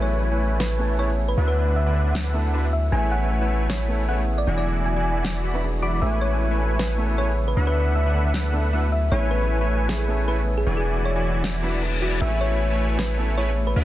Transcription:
Already playing: A1 C#3 A3 B3 C#4 E4 G#4 B4 C#5 G#5
0.02 C#5
0.32 A3 E4 B4 C#5 G#5
0.60 B4, snare
0.78 A3 B3 C#4 E4 A4
0.98 A3 B3 C#4 E4 G#4 B4 C#5 G#5
1.28 B4
1.35 D2 D3 F#3 A3 B3 D4 E4 F#4 B4 E5 F#5
1.48 B4
1.76 E5
1.86 D3 D4 B4 E5 F#5
2.15 snare
2.33 A3 B3 D4 E4 A4
2.53 D3 A3 B3 D4 E4 F#4 B4 E5 F#5
2.73 E5
2.90 A1 C#3 A3 B3 C#4 E4 G#4 B4 C#5 G#5
2.94 G#4
3.12 F#5
3.41 A3 E4 B4 C#5 G#5
3.70 C#5, snare
3.88 A3 B3 C#4 E4 A4
4.07 A3 B3 C#4 E4 G#4 B4 C#5 F#5 G#5
4.38 D5
4.45 E1 D3 E3 F#3 G#3 B3 D4 E4 F#4 D5 G#5
4.49 G#4
4.58 D5
4.86 G#5
4.96 E3 E4 F#4 D5 G#5
5.25 snare
5.44 E3 E4 F#4 D5 B5
5.53 F#3 B3 D4 E4 B4
5.62 F#3 B3 D4 E4 G#4
5.82 E3 E4 F#4 D5 B5 D6
6.00 A1 C#3 A3 B3 C#4 E4 G#4 B4 C#5 E5 G#5
6.04 G#4
6.21 C#5
6.51 A3 E4 B4 C#5 G#5
6.79 B4, snare
6.98 A3 B3 C#4 E4 A4
7.17 A3 B3 C#4 E4 G#4 B4 C#5 G#5
7.48 B4
7.55 D2 D3 F#3 A3 B3 D4 E4 F#4 B4 E5 F#5
7.67 B4
7.96 E5
8.06 D3 D4 B4 E5 F#5
8.34 snare
8.52 A3 B3 D4 E4 A4
8.72 D3 A3 B3 D4 E4 F#4 B4 E5 F#5
8.92 E5
9.10 A1 C#3 A3 B3 C#4 E4 G#4 B4 C#5 G#5
9.31 B4
9.61 A3 E4 B4 C#5 G#5
9.89 G#4, snare
10.08 A3 B3 C#4 E4 A4
10.27 A3 B3 C#4 E4 G#4 B4 C#5 G#5
10.57 G#4
10.65 E1 E3 F#3 G#3 B3 D4 E4 F#4 G#4 D5 G#5
10.77 G#4
11.05 C#5
11.15 E3 E4 F#4 D5 G#5
11.44 snare, reverse cymbal
11.62 E3 F#3 B3 D4 E4 F#4 B4 D5 B5
11.81 F#3 B3 D4 E4 G#4
12.02 E3 E4 F#4 D5 B5
12.19 A1 C#3 A3 B3 C#4 E4 G#4 B4 C#5 E5 G#5
12.23 G#4
12.41 C#5
12.70 A3 E4 B4 C#5 G#5
12.99 B4, snare
13.17 A3 B3 C#4 E4 A4
13.36 A3 B3 C#4 E4 G#4 B4 C#5 G#5
13.67 B4
13.74 D2 D3 A3 B3 D4 E4 B4 E5 F#5
13.78 F#4

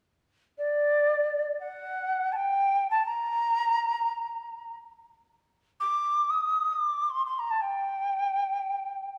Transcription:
0.58 D5
1.60 F#5
2.32 G5 A5
2.90 A5
3.05 A#5
5.80 D6
6.30 D#6
6.72 D6
7.09 C6
7.25 C6
7.38 A#5
7.50 A5
7.61 G5

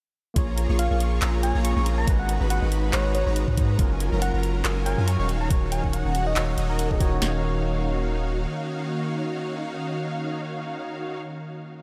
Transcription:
0.34 A#1 G#3 A#3 C#4 F4 G#4 C#5 A#5, kick, closed hi-hat
0.48 C#5
0.58 A#4, closed hi-hat
0.69 A#1 A#3 C#4 F4 G#4 C#5 C#6
0.79 C#4 F5, closed hi-hat
0.91 A#1 A#3 F4 G#4 C#5 F5 C#6
1.00 A#4, closed hi-hat
1.12 G#4
1.22 A#1 A#3 C#4 F4 G#4 C#5 A#5, clap, closed hi-hat
1.34 C#5
1.41 A#3 F4 G#4 A#4 C#5 G#5, closed hi-hat
1.55 A#1 A#3 C#4 F4 G#4 C#5 A#5
1.65 C#4 C#6, closed hi-hat
1.76 A#1 A#3 F4 G#4 C#5 A#5 C#6
1.86 A#4, closed hi-hat
1.98 G#4 A#5
2.05 G#1 G#3 D#4 F#4 B4 A#5, kick, closed hi-hat
2.09 B4
2.19 D#5 F#5
2.29 B4, closed hi-hat
2.41 G#1 G#3 D#4 F#4 B4 B5
2.50 D#4 F#5, closed hi-hat
2.62 G#1 G#3 D#4 F#4 B4 D#5 B5
2.72 B4, closed hi-hat
2.84 G#4
2.91 G#1 G#3 D#4 F#4 B4 C#5 A#5, clap, closed hi-hat
2.95 B4
3.05 D#5
3.15 B4 C#5, closed hi-hat
3.26 G#1 G#3 D#4 F#4 B4 C#5 A#5
3.36 D#4, closed hi-hat
3.48 G#2 G#3 D#4 F#4 B4 D#5 A#5, kick
3.57 B4, kick, closed hi-hat
3.69 G#4
3.77 F#1 F#3 C#4 F4 A#4 G#5, kick, closed hi-hat
3.81 A#4
3.91 C#5
4.00 A#4, closed hi-hat
4.12 F#1 F#3 C#4 F4 A#4 A#5
4.22 C#4 F#5, closed hi-hat
4.34 F#1 F#3 C#4 F4 A#4 C#5 F#5 A#5
4.43 A#4, closed hi-hat
4.55 F#4
4.65 F#1 F#3 C#4 F4 A#4 G#5, clap, closed hi-hat
4.76 C#5
4.85 F#3 C#4 A#4 F5 G#5, closed hi-hat
4.98 F#2 F#3 C#4 F4 A#4 G#5
5.08 C#4 C#6, closed hi-hat
5.19 D#1 D#3 D#4 F#4 C#5 F5 C#6
5.29 D#3 A#3 C#4 F#4 A#4, closed hi-hat
5.41 F#4 A#5
5.49 D#1 D#3 C#4 D#4 F#4 C#5 F5, kick, closed hi-hat
5.62 C#5
5.72 A#4 G#5, closed hi-hat
5.84 D#1 D#3 C#4 D#4 F#4 C#5 F#5, kick
5.93 C#4 F#5, closed hi-hat
6.05 D#1 D#3 D#4 F#4 C#5 F#5
6.15 A#4, closed hi-hat
6.27 F#4 D#5
6.34 D#1 D#3 C#4 D#4 F#4 C#5 F5, clap, closed hi-hat
6.38 C#5
6.48 C#5
6.58 D#1 D#3 C#4 D#4 F#4 C#5 D#5, closed hi-hat
6.69 D#4 A#4
6.79 F#5, closed hi-hat
6.90 D#1 D#3 C#4 D#4 F#4 C#5 D#5, kick
7.00 D#3 D#4 F#4 C#5 D#5, kick, closed hi-hat
7.12 A#4
7.19 D#1 D#3 A#3 C#4 D#4 F#4 C#5 F5, snare
7.23 F#4 C#5

